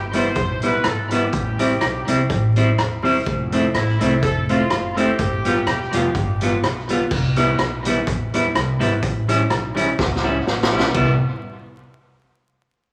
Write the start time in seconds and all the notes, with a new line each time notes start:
Already playing: G1
0.13 G3 B3 E4 C5, closed hi-hat
0.35 B1, muted clean electric guitar stroke, kick, closed hi-hat
0.62 G3 B3 E4, closed hi-hat
0.66 B4
0.84 G#1 A4, cross-stick, closed hi-hat
1.10 G3 B3 E4 G4, closed hi-hat
1.32 A1, kick, closed hi-hat
1.59 G3 C4 E4, closed hi-hat
1.81 B1, cross-stick, closed hi-hat
2.08 C2 G3 C4 E4, closed hi-hat
2.30 A1, muted clean electric guitar stroke, kick, closed hi-hat
2.56 G3 C4 E4, closed hi-hat
2.78 E1, cross-stick, closed hi-hat
3.03 G3 C4 E4, open hi-hat
3.26 F1, kick, closed hi-hat
3.52 A3 C4 E4, closed hi-hat
3.74 A1 E4, cross-stick, closed hi-hat
4.01 C2 A3 C4 E4, closed hi-hat
4.23 F1 A4, kick, closed hi-hat
4.49 A3 C4 E4 F4, closed hi-hat
4.70 F#1, cross-stick, closed hi-hat
4.97 A3 C4 E4 G4, closed hi-hat
5.18 G1, kick, closed hi-hat
5.45 G3 B3 F4, closed hi-hat
5.67 E1, cross-stick, closed hi-hat
5.92 F1 G3 B3 F4, closed hi-hat
6.15 G1, muted clean electric guitar stroke, kick, closed hi-hat
6.41 G3 B3 F4, closed hi-hat
6.62 B1, cross-stick, closed hi-hat
6.89 G3 B3 F4, closed hi-hat
7.11 C2, kick, crash
7.36 G3 B3 E4, closed hi-hat
7.58 B1, cross-stick, closed hi-hat
7.85 G3 B3 E4, closed hi-hat
8.07 E2, muted clean electric guitar stroke, kick, closed hi-hat
8.34 G3 B3 E4, closed hi-hat
8.55 C2, cross-stick, closed hi-hat
8.80 G#1 G3 B3 E4, closed hi-hat
9.02 A1, kick, closed hi-hat
9.29 G3 C#4 E4, closed hi-hat
9.50 B1, cross-stick, closed hi-hat
9.75 G3 C#4 E4, closed hi-hat
9.99 C#2, muted clean electric guitar stroke, kick, snare
10.16 snare
10.23 G3 C#4 E4
10.47 A1, snare
10.63 snare
10.72 B1 G3 C#4 E4
10.79 snare
10.94 C2 G3 B3 E4, kick, ride bell